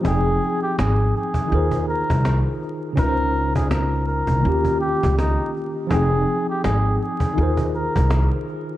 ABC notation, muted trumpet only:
X:1
M:4/4
L:1/16
Q:"Swing 16ths" 1/4=82
K:Fm
V:1 name="Muted trumpet"
A3 G A2 A4 B3 z3 | B3 A B2 B4 G2 E2 z2 | A3 G A2 A4 B3 z3 |]